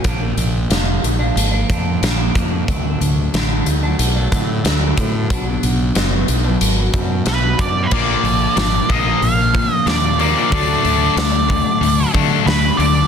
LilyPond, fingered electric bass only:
\new Staff \with { instrumentName = "Fingered electric bass" } { \clef bass \time 4/4 \key ais \phrygian \tempo 4 = 92 ais,,8 ais,,8 eis,,8 ais,,8 gis,,8 eis,8 ais,,8 eis,8 | d,8 d,8 a,,8 d,8 b,,8 a,8 d,8 a,8 | b,,8 b,,8 fis,,8 b,,8 gis,,8 fis,8 b,,8 fis,8 | ais,,8 ais,,8 gis,,8 ais,,8 ais,,4 dis,4 |
d,8 d,8 d,4 d,8 d8 d,8 d,8 | }